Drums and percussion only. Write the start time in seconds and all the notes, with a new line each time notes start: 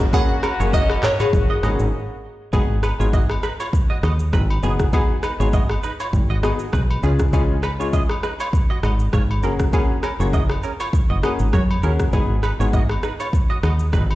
0.00 kick
0.13 kick, high agogo, shaker
0.43 cross-stick, high agogo, shaker
0.61 shaker
0.73 kick, low woodblock, shaker
0.90 cross-stick, high agogo
1.03 cross-stick, clap, mid tom, shaker
1.20 mid tom, high agogo, shaker
1.33 kick, shaker
1.63 cross-stick, high agogo, shaker
1.79 shaker
2.53 kick, high agogo, shaker
2.83 cross-stick, high agogo, shaker
3.01 shaker
3.13 kick, low woodblock, shaker
3.30 cross-stick, high agogo
3.43 cross-stick, shaker
3.60 high agogo, shaker
3.73 kick, shaker
4.03 cross-stick, high agogo, shaker
4.19 shaker
4.33 kick, cross-stick, shaker
4.50 high agogo
4.63 shaker
4.79 kick, cross-stick, shaker
4.93 kick, high agogo, shaker
5.23 cross-stick, high agogo, shaker
5.41 shaker
5.53 kick, low woodblock, shaker
5.69 cross-stick, high agogo
5.83 shaker
6.00 high agogo, shaker
6.13 kick, shaker
6.43 cross-stick, high agogo, shaker
6.59 shaker
6.73 kick, cross-stick, shaker
6.91 high agogo
7.03 shaker
7.19 kick, cross-stick, shaker
7.33 kick, high agogo, shaker
7.63 cross-stick, high agogo, shaker
7.81 shaker
7.93 kick, low woodblock, shaker
8.09 cross-stick, high agogo
8.23 cross-stick, shaker
8.40 high agogo, shaker
8.53 kick, shaker
8.83 cross-stick, high agogo, shaker
8.99 shaker
9.13 kick, cross-stick, shaker
9.31 high agogo
9.43 shaker
9.59 kick, cross-stick, shaker
9.73 kick, high agogo, shaker
10.03 cross-stick, high agogo, shaker
10.21 shaker
10.33 kick, low woodblock, shaker
10.49 cross-stick, high agogo
10.63 shaker
10.80 high agogo, shaker
10.93 kick, shaker
11.23 cross-stick, high agogo, shaker
11.39 shaker
11.53 kick, cross-stick, shaker
11.71 high agogo
11.83 shaker
11.99 kick, cross-stick, shaker
12.13 kick, high agogo, shaker
12.43 cross-stick, high agogo, shaker
12.61 shaker
12.73 kick, low woodblock, shaker
12.89 cross-stick, high agogo
13.03 cross-stick, shaker
13.20 high agogo, shaker
13.33 kick, shaker
13.63 cross-stick, high agogo, shaker
13.79 shaker
13.93 kick, cross-stick, shaker
14.11 high agogo